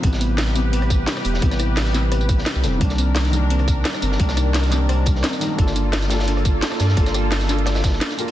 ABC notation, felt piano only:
X:1
M:4/4
L:1/8
Q:"Swing 16ths" 1/4=173
K:Aphr
V:1 name="Felt piano"
[C,E,G,=B,]3 [C,E,G,B,]4- [C,E,G,B,] | [C,E,G,=B,]3 [C,E,G,B,]4 [C,E,G,C] | [_E,G,B,D]3 [E,G,B,D]4- [E,G,B,D] | [_E,G,B,D]3 [E,G,B,D]4 [E,G,B,_E] |
[B,DFA]3 [B,DFA]4- [B,DFA] | [B,DFA]3 [B,DFA]4 [B,DFB] |]